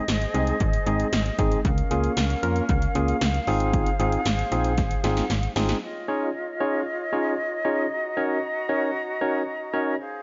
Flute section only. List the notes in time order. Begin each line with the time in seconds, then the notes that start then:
Already playing: G#4 C5 D#5
1.65 C#4 A#4 F5
3.47 G#4 C5
5.82 F4 C#5 D#5
7.91 F#4 A#5
10.00 G#4 C5 F5